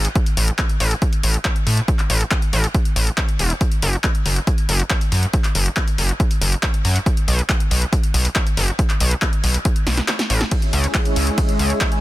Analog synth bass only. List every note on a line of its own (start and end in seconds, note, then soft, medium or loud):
0.37 0.51 A1 loud
0.80 0.94 A1 medium
1.23 1.37 A1 loud
1.67 1.80 A2 medium
2.10 2.23 A1 loud
2.53 2.67 A1 medium
2.96 3.10 A1 loud
3.39 3.53 E1 medium
3.83 3.96 F#1 loud
4.26 4.39 F#1 medium
4.69 4.82 F#1 loud
5.12 5.26 F#2 medium
5.55 5.69 F#1 loud
5.98 6.12 F#1 medium
6.41 6.55 F#1 loud
6.85 6.98 F#2 medium
7.28 7.41 B1 loud
7.71 7.85 B1 medium
8.14 8.28 B1 loud
8.57 8.71 F#1 medium
9.01 9.14 B1 loud
9.44 9.57 B1 medium
9.87 10.00 B1 medium
10.30 10.44 A1 medium
10.73 10.87 C#2 loud
11.16 11.30 C#2 medium
11.59 11.73 C#2 loud